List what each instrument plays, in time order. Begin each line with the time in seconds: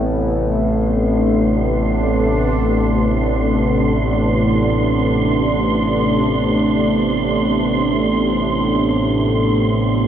Already playing: synth drone A1 A2, analog synth pad C3 A3 B3 E4
0.49 synth texture C6
0.89 analog synth pad D4